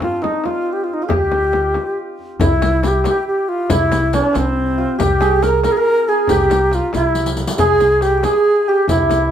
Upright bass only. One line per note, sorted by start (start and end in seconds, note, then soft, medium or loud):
1.11 1.76 D2 medium
2.40 3.05 C2 medium
3.70 4.19 C2 medium
4.35 4.84 C2 medium
5.00 5.65 C2 medium
6.30 6.79 C2 medium
6.95 7.43 C2 medium
7.59 8.24 C2 medium
8.88 9.31 C2 medium